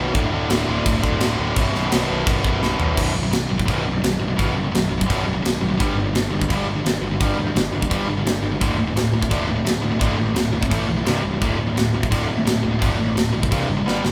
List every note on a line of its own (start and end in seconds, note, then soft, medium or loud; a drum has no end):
0.00 0.10 B0 medium
0.00 0.13 B1 loud
0.00 0.14 F#2 medium
0.00 0.14 B2 loud
0.14 0.27 D1 loud
0.14 0.31 D2 loud
0.14 0.32 A2 loud
0.14 0.32 D3 loud
0.14 kick loud
0.14 crash medium
0.32 0.45 D1 medium
0.32 0.49 D2 medium
0.32 0.49 A2 loud
0.32 0.50 D3 loud
0.50 0.63 D1 loud
0.50 0.66 D2 medium
0.50 0.67 A2 medium
0.50 0.68 D3 medium
0.50 snare loud
0.50 crash medium
0.68 0.81 D1 loud
0.68 0.84 D2 medium
0.68 0.85 A2 medium
0.68 0.86 D3 loud
0.85 0.99 D1 medium
0.85 1.01 D2 loud
0.85 1.02 A2 loud
0.85 1.02 D3 loud
0.85 kick loud
0.85 crash medium
1.03 1.16 D1 loud
1.03 1.19 D2 medium
1.03 1.20 A2 loud
1.03 1.20 D3 loud
1.03 kick medium
1.20 1.34 D1 medium
1.20 1.38 D2 medium
1.20 1.38 A2 medium
1.20 1.38 D3 loud
1.20 snare loud
1.20 crash medium
1.39 1.51 D1 medium
1.39 1.55 D2 medium
1.39 1.55 A2 medium
1.39 1.55 D3 loud
1.56 1.69 B0 loud
1.56 1.72 B1 loud
1.56 1.73 F#2 loud
1.56 1.73 B2 loud
1.56 kick loud
1.56 crash medium
1.73 1.86 B0 medium
1.73 1.89 B1 medium
1.73 1.90 F#2 medium
1.73 1.90 B2 loud
1.73 snare soft
1.91 2.04 B0 loud
1.91 2.07 B1 medium
1.91 2.08 F#2 medium
1.91 2.08 B2 loud
1.91 snare loud
1.91 crash medium
2.08 2.22 B0 medium
2.08 2.24 B1 medium
2.08 2.24 F#2 medium
2.08 2.25 B2 loud
2.25 2.39 B0 medium
2.25 2.42 B1 medium
2.25 2.42 F#2 loud
2.25 2.43 B2 loud
2.25 kick loud
2.25 crash medium
2.43 2.57 B0 loud
2.43 2.59 B1 medium
2.43 2.60 F#2 medium
2.43 2.60 B2 medium
2.43 kick medium
2.61 2.75 B0 medium
2.61 2.77 B1 medium
2.61 2.77 F#2 medium
2.61 2.78 B2 loud
2.61 snare medium
2.78 2.98 B0 medium
2.78 2.94 B1 medium
2.78 2.94 F#2 medium
2.78 2.95 B2 medium
2.78 floor tom loud
2.95 3.10 B0 loud
2.95 3.12 B1 medium
2.95 3.13 F#2 medium
2.95 3.13 B2 medium
2.95 kick loud
2.95 crash loud
2.95 crash medium
3.14 3.28 B0 medium
3.14 3.23 B1 medium
3.14 3.22 F#2 medium
3.23 3.31 B1 medium
3.23 3.31 F#2 medium
3.32 3.45 B0 medium
3.32 3.48 B1 medium
3.32 3.48 F#2 medium
3.32 snare loud
3.32 crash medium
3.49 3.63 B0 medium
3.49 3.58 B1 medium
3.49 3.58 F#2 medium
3.59 3.67 B1 medium
3.59 3.68 F#2 medium
3.59 kick medium
3.68 3.81 B0 medium
3.68 3.84 B1 medium
3.68 3.85 F#2 loud
3.68 3.85 B2 medium
3.68 kick medium
3.68 crash medium
3.86 3.99 B0 medium
3.86 3.95 B1 medium
3.86 3.94 F#2 medium
3.96 4.02 B1 medium
3.96 4.03 F#2 medium
4.04 4.16 B0 medium
4.04 4.19 B1 medium
4.04 4.19 F#2 medium
4.04 snare loud
4.04 crash medium
4.21 4.34 B0 medium
4.21 4.30 B1 medium
4.21 4.29 F#2 medium
4.30 4.39 B1 medium
4.30 4.38 F#2 medium
4.36 4.52 B0 loud
4.36 4.53 B1 loud
4.36 4.52 F#2 loud
4.36 kick medium
4.36 crash medium
4.41 4.56 B1 medium
4.41 4.56 F#2 loud
4.41 4.56 B2 medium
4.56 4.69 F#1 medium
4.56 4.65 B1 medium
4.56 4.64 F#2 medium
4.65 4.73 B1 medium
4.65 4.73 F#2 medium
4.74 4.86 B0 loud
4.74 4.90 B1 medium
4.74 4.89 F#2 medium
4.74 snare loud
4.74 crash medium
4.90 5.04 B0 medium
4.90 4.98 B1 medium
4.90 4.98 F#2 medium
5.00 5.07 B1 medium
5.00 5.07 F#2 medium
5.00 kick medium
5.08 5.23 B0 medium
5.08 5.25 B1 medium
5.08 5.24 F#2 loud
5.08 5.25 B2 loud
5.08 kick medium
5.08 crash medium
5.25 5.39 B0 medium
5.25 5.33 B1 medium
5.25 5.33 F#2 medium
5.35 5.42 B1 medium
5.35 5.43 F#2 medium
5.43 5.57 B0 medium
5.43 5.59 B1 medium
5.43 5.60 F#2 medium
5.43 snare loud
5.43 crash medium
5.61 5.74 B0 medium
5.61 5.69 B1 medium
5.61 5.69 F#2 medium
5.70 5.79 B1 medium
5.70 5.79 F#2 medium
5.79 5.93 G1 loud
5.79 5.96 G2 medium
5.79 5.96 D3 loud
5.79 5.96 G3 medium
5.79 kick loud
5.79 crash medium
5.96 6.09 G1 medium
5.96 6.06 G2 medium
5.96 6.06 D3 medium
6.07 6.14 G2 medium
6.07 6.15 D3 medium
6.14 6.27 G1 loud
6.14 6.31 G2 medium
6.14 6.31 D3 medium
6.14 snare loud
6.14 crash medium
6.32 6.45 G1 medium
6.32 6.41 G2 medium
6.32 6.40 D3 medium
6.42 6.50 G2 medium
6.42 6.50 D3 medium
6.42 kick medium
6.50 6.63 G1 medium
6.50 6.67 G2 medium
6.50 6.66 D3 medium
6.50 6.67 G3 loud
6.50 kick loud
6.50 crash medium
6.67 6.80 G1 medium
6.67 6.76 G2 medium
6.67 6.75 D3 medium
6.76 6.85 G2 medium
6.76 6.85 D3 medium
6.84 6.97 G1 medium
6.84 7.01 G2 medium
6.84 7.01 D3 loud
6.84 snare loud
6.84 crash medium
7.03 7.15 G1 medium
7.03 7.12 G2 medium
7.03 7.12 D3 medium
7.13 7.19 G2 medium
7.13 7.20 D3 medium
7.21 7.33 G1 medium
7.21 7.37 G2 medium
7.21 7.37 D3 medium
7.21 7.37 G3 medium
7.21 kick loud
7.21 crash medium
7.38 7.51 D2 medium
7.38 7.46 G2 medium
7.38 7.45 D3 medium
7.47 7.54 G2 medium
7.47 7.55 D3 medium
7.55 7.68 G1 medium
7.55 7.71 G2 medium
7.55 7.71 D3 medium
7.55 snare loud
7.55 crash medium
7.73 7.86 G1 medium
7.73 7.81 G2 medium
7.73 7.80 D3 medium
7.81 7.89 G2 medium
7.81 7.89 D3 medium
7.81 kick medium
7.90 8.04 G1 medium
7.90 8.07 G2 medium
7.90 8.06 D3 medium
7.90 8.07 G3 loud
7.90 kick medium
7.90 crash medium
8.08 8.21 G1 medium
8.08 8.17 G2 medium
8.08 8.16 D3 medium
8.17 8.24 G2 medium
8.17 8.25 D3 medium
8.25 8.38 G1 medium
8.25 8.41 G2 medium
8.25 8.41 D3 medium
8.25 snare loud
8.25 crash medium
8.43 8.56 G1 medium
8.43 8.51 G2 medium
8.43 8.51 D3 medium
8.52 8.60 G2 medium
8.52 8.60 D3 medium
8.60 8.74 D1 medium
8.60 8.77 D2 medium
8.60 8.77 A2 loud
8.60 8.77 D3 loud
8.60 kick loud
8.60 crash medium
8.78 8.91 D1 medium
8.78 8.87 D2 medium
8.78 8.87 A2 medium
8.88 8.95 D2 medium
8.88 8.96 A2 medium
8.96 9.09 D1 medium
8.96 9.12 D2 medium
8.96 9.12 A2 medium
8.96 snare loud
8.96 crash medium
9.13 9.26 D1 medium
9.13 9.21 D2 medium
9.13 9.21 A2 medium
9.22 9.29 D2 medium
9.22 9.30 A2 medium
9.22 kick medium
9.31 9.44 D1 medium
9.31 9.47 D2 medium
9.31 9.47 A2 loud
9.31 9.48 D3 loud
9.31 kick medium
9.31 crash medium
9.47 9.61 D1 medium
9.47 9.57 D2 medium
9.47 9.56 A2 medium
9.58 9.64 D2 medium
9.58 9.65 A2 medium
9.65 9.78 D1 medium
9.65 9.81 D2 medium
9.65 9.81 A2 medium
9.65 snare loud
9.65 crash medium
9.83 9.96 D1 medium
9.83 9.91 D2 medium
9.83 9.91 A2 medium
9.92 9.99 D2 medium
9.92 9.99 A2 medium
10.00 10.14 D1 loud
10.00 10.17 D2 medium
10.00 10.17 A2 medium
10.00 10.17 D3 loud
10.00 kick loud
10.00 crash medium
10.18 10.31 A1 medium
10.18 10.27 D2 medium
10.18 10.27 A2 medium
10.28 10.34 D2 medium
10.28 10.34 A2 medium
10.35 10.49 D1 medium
10.35 10.51 D2 medium
10.35 10.51 A2 medium
10.35 snare loud
10.35 crash medium
10.53 10.66 D1 medium
10.53 10.60 D2 medium
10.53 10.59 A2 medium
10.61 10.69 D2 medium
10.61 10.69 A2 medium
10.61 kick medium
10.70 10.84 A1 medium
10.70 10.86 A2 medium
10.70 10.86 E3 loud
10.70 10.87 A3 loud
10.70 kick medium
10.70 crash medium
10.87 11.02 B0 medium
10.87 10.96 A2 medium
10.87 10.96 E3 medium
10.97 11.04 A2 medium
10.97 11.05 E3 medium
11.05 11.19 C1 medium
11.05 11.22 C2 loud
11.05 11.22 G2 loud
11.05 11.22 C3 loud
11.05 snare loud
11.05 crash medium
11.23 11.37 C1 medium
11.23 11.30 C2 medium
11.23 11.30 G2 medium
11.31 11.40 C2 medium
11.31 11.40 G2 medium
11.40 11.55 D1 loud
11.40 11.56 D2 medium
11.40 11.56 A2 loud
11.40 11.57 D3 loud
11.40 kick loud
11.40 crash medium
11.57 11.72 D1 medium
11.57 11.66 D2 medium
11.57 11.65 A2 medium
11.66 11.74 D2 medium
11.66 11.74 A2 medium
11.75 11.89 D1 medium
11.75 11.91 D2 medium
11.75 11.92 A2 medium
11.75 snare loud
11.75 crash medium
11.93 12.07 D1 loud
11.93 12.02 D2 medium
11.93 12.01 A2 medium
12.02 12.10 D2 medium
12.02 12.10 A2 medium
12.02 kick medium
12.11 12.25 D1 medium
12.11 12.27 D2 medium
12.11 12.27 A2 loud
12.11 12.28 D3 loud
12.11 kick loud
12.11 crash medium
12.29 12.41 D1 loud
12.29 12.37 D2 medium
12.29 12.37 A2 medium
12.38 12.45 D2 medium
12.38 12.45 A2 medium
12.45 12.58 D1 medium
12.45 12.62 D2 medium
12.45 12.62 A2 medium
12.45 snare loud
12.45 crash medium
12.64 12.76 D1 medium
12.64 12.72 D2 medium
12.64 12.71 A2 medium
12.72 12.80 D2 medium
12.72 12.80 A2 medium
12.81 12.95 D1 loud
12.81 12.97 D2 medium
12.81 12.98 A2 medium
12.81 12.98 D3 medium
12.81 kick loud
12.81 crash medium
13.00 13.12 A1 medium
13.00 13.07 D2 medium
13.00 13.06 A2 medium
13.07 13.14 D2 medium
13.07 13.14 A2 medium
13.15 13.30 D1 medium
13.15 13.31 D2 medium
13.15 13.32 A2 medium
13.15 snare loud
13.15 crash medium
13.33 13.47 B0 medium
13.33 13.41 D2 medium
13.33 13.40 A2 medium
13.41 13.50 D2 medium
13.41 13.51 A2 medium
13.41 kick medium
13.51 13.65 C1 medium
13.51 13.67 C2 medium
13.51 13.68 G2 loud
13.51 13.68 C3 loud
13.51 kick loud
13.51 crash medium
13.70 13.82 F#1 loud
13.70 13.78 C2 medium
13.70 13.77 G2 medium
13.78 13.86 C2 medium
13.78 13.86 G2 medium
13.87 13.99 G1 medium
13.87 14.03 G2 medium
13.87 14.03 D3 loud
13.87 14.03 G3 loud
13.87 snare medium
14.04 14.12 G1 medium
14.04 14.12 G2 medium
14.04 14.12 D3 medium
14.04 snare medium